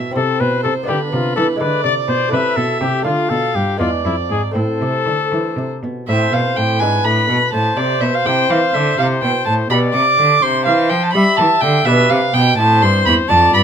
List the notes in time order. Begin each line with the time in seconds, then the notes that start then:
Already playing: B2 E4 G4 E5
0.11 C4 E4
0.16 C3 A4 C5
0.40 B2 B4
0.63 C3 A4
0.83 B3 D4 F4
0.87 D3 G4 B4
1.12 C3 F4
1.36 E3 A4
1.56 G#3 E4
1.60 D3 B4 D5
1.84 C3 D5
2.08 B2 C5
2.29 A3 E4 B4
2.33 C3 E5
2.56 B2 A4
2.81 C3 G4
3.02 D3 A3 D4 F4 F5
3.06 D3
3.30 B2 A4
3.55 G2 G4
3.77 E2 G#3 B3 D4 F4 D5
3.81 E2
4.05 F2 E4
4.30 G#2 G#4
4.51 A3 C4 E4
4.56 A2 A4 C5
4.82 C3
5.07 D3
5.32 E3
5.57 C3
5.83 B2
6.07 A2 C4 E4 A4 C5 E5
6.32 B2 F5
6.56 A2 G5
6.80 G#2 D4 E4 B4 G#5
7.04 A2 B5
7.29 B2
7.52 A2 C5 A5
7.77 C3 D5
8.01 B2 E5
8.14 F5
8.25 C3 C4 E4 C5 G5
8.49 E3 F5
8.74 D3 E5
8.98 C3 E4 C5 F5
9.22 B2 G5
9.45 A2 A5
9.70 B2 G4 D5 F5 B5
9.93 C3 D6
10.18 D3
10.42 C3 C5 C6
10.65 E3 F5
10.90 F3 G5
11.03 A5
11.13 G3 G4 E5 B5
11.37 E3 A5
11.60 D3 G5
11.85 B2 G4 B4 D5 E5
12.10 C3 F5
12.34 B2 G5
12.58 A2 C4 E4 C5 E5 A5
12.81 G2 C6
13.05 E2 B5
13.29 F2 D4 F4 D5 A5
13.53 G2 B5